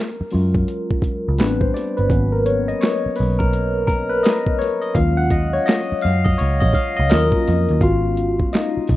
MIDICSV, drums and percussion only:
0, 0, Header, 1, 2, 480
1, 0, Start_track
1, 0, Tempo, 714286
1, 1410, Time_signature, 4, 2, 24, 8
1, 6025, End_track
2, 0, Start_track
2, 0, Title_t, "Drums"
2, 205, Note_on_c, 9, 46, 41
2, 273, Note_off_c, 9, 46, 0
2, 367, Note_on_c, 9, 36, 88
2, 434, Note_off_c, 9, 36, 0
2, 458, Note_on_c, 9, 42, 67
2, 525, Note_off_c, 9, 42, 0
2, 609, Note_on_c, 9, 36, 86
2, 676, Note_off_c, 9, 36, 0
2, 686, Note_on_c, 9, 36, 82
2, 697, Note_on_c, 9, 42, 57
2, 753, Note_off_c, 9, 36, 0
2, 765, Note_off_c, 9, 42, 0
2, 931, Note_on_c, 9, 42, 83
2, 945, Note_on_c, 9, 38, 115
2, 945, Note_on_c, 9, 39, 88
2, 998, Note_off_c, 9, 42, 0
2, 1012, Note_off_c, 9, 38, 0
2, 1013, Note_off_c, 9, 39, 0
2, 1082, Note_on_c, 9, 36, 84
2, 1149, Note_off_c, 9, 36, 0
2, 1187, Note_on_c, 9, 42, 66
2, 1189, Note_on_c, 9, 38, 31
2, 1254, Note_off_c, 9, 42, 0
2, 1256, Note_off_c, 9, 38, 0
2, 1328, Note_on_c, 9, 42, 35
2, 1395, Note_off_c, 9, 42, 0
2, 1410, Note_on_c, 9, 36, 103
2, 1419, Note_on_c, 9, 42, 72
2, 1477, Note_off_c, 9, 36, 0
2, 1487, Note_off_c, 9, 42, 0
2, 1653, Note_on_c, 9, 42, 67
2, 1720, Note_off_c, 9, 42, 0
2, 1806, Note_on_c, 9, 42, 33
2, 1873, Note_off_c, 9, 42, 0
2, 1891, Note_on_c, 9, 42, 66
2, 1905, Note_on_c, 9, 38, 105
2, 1905, Note_on_c, 9, 39, 83
2, 1958, Note_off_c, 9, 42, 0
2, 1972, Note_off_c, 9, 38, 0
2, 1972, Note_off_c, 9, 39, 0
2, 2122, Note_on_c, 9, 46, 44
2, 2189, Note_off_c, 9, 46, 0
2, 2285, Note_on_c, 9, 36, 85
2, 2353, Note_off_c, 9, 36, 0
2, 2374, Note_on_c, 9, 42, 71
2, 2441, Note_off_c, 9, 42, 0
2, 2606, Note_on_c, 9, 36, 86
2, 2618, Note_on_c, 9, 42, 57
2, 2673, Note_off_c, 9, 36, 0
2, 2685, Note_off_c, 9, 42, 0
2, 2851, Note_on_c, 9, 42, 83
2, 2866, Note_on_c, 9, 38, 115
2, 2866, Note_on_c, 9, 39, 100
2, 2918, Note_off_c, 9, 42, 0
2, 2933, Note_off_c, 9, 38, 0
2, 2933, Note_off_c, 9, 39, 0
2, 3001, Note_on_c, 9, 36, 86
2, 3068, Note_off_c, 9, 36, 0
2, 3102, Note_on_c, 9, 42, 62
2, 3104, Note_on_c, 9, 38, 31
2, 3169, Note_off_c, 9, 42, 0
2, 3171, Note_off_c, 9, 38, 0
2, 3242, Note_on_c, 9, 42, 34
2, 3309, Note_off_c, 9, 42, 0
2, 3326, Note_on_c, 9, 36, 106
2, 3331, Note_on_c, 9, 42, 78
2, 3394, Note_off_c, 9, 36, 0
2, 3398, Note_off_c, 9, 42, 0
2, 3565, Note_on_c, 9, 36, 88
2, 3568, Note_on_c, 9, 42, 65
2, 3632, Note_off_c, 9, 36, 0
2, 3635, Note_off_c, 9, 42, 0
2, 3810, Note_on_c, 9, 42, 70
2, 3824, Note_on_c, 9, 38, 111
2, 3824, Note_on_c, 9, 39, 90
2, 3877, Note_off_c, 9, 42, 0
2, 3891, Note_off_c, 9, 38, 0
2, 3891, Note_off_c, 9, 39, 0
2, 4042, Note_on_c, 9, 42, 59
2, 4064, Note_on_c, 9, 38, 37
2, 4109, Note_off_c, 9, 42, 0
2, 4131, Note_off_c, 9, 38, 0
2, 4205, Note_on_c, 9, 36, 88
2, 4272, Note_off_c, 9, 36, 0
2, 4294, Note_on_c, 9, 42, 69
2, 4361, Note_off_c, 9, 42, 0
2, 4447, Note_on_c, 9, 36, 90
2, 4455, Note_on_c, 9, 38, 30
2, 4514, Note_off_c, 9, 36, 0
2, 4522, Note_off_c, 9, 38, 0
2, 4525, Note_on_c, 9, 36, 84
2, 4537, Note_on_c, 9, 42, 66
2, 4592, Note_off_c, 9, 36, 0
2, 4604, Note_off_c, 9, 42, 0
2, 4680, Note_on_c, 9, 42, 34
2, 4748, Note_off_c, 9, 42, 0
2, 4768, Note_on_c, 9, 42, 88
2, 4782, Note_on_c, 9, 38, 113
2, 4783, Note_on_c, 9, 39, 101
2, 4835, Note_off_c, 9, 42, 0
2, 4850, Note_off_c, 9, 38, 0
2, 4850, Note_off_c, 9, 39, 0
2, 4919, Note_on_c, 9, 36, 91
2, 4986, Note_off_c, 9, 36, 0
2, 5024, Note_on_c, 9, 42, 68
2, 5026, Note_on_c, 9, 38, 32
2, 5091, Note_off_c, 9, 42, 0
2, 5093, Note_off_c, 9, 38, 0
2, 5165, Note_on_c, 9, 42, 37
2, 5232, Note_off_c, 9, 42, 0
2, 5248, Note_on_c, 9, 36, 98
2, 5255, Note_on_c, 9, 42, 71
2, 5315, Note_off_c, 9, 36, 0
2, 5323, Note_off_c, 9, 42, 0
2, 5492, Note_on_c, 9, 42, 62
2, 5559, Note_off_c, 9, 42, 0
2, 5642, Note_on_c, 9, 36, 82
2, 5709, Note_off_c, 9, 36, 0
2, 5733, Note_on_c, 9, 42, 64
2, 5746, Note_on_c, 9, 38, 101
2, 5747, Note_on_c, 9, 39, 88
2, 5800, Note_off_c, 9, 42, 0
2, 5813, Note_off_c, 9, 38, 0
2, 5814, Note_off_c, 9, 39, 0
2, 5964, Note_on_c, 9, 46, 44
2, 5975, Note_on_c, 9, 36, 85
2, 6025, Note_off_c, 9, 36, 0
2, 6025, Note_off_c, 9, 46, 0
2, 6025, End_track
0, 0, End_of_file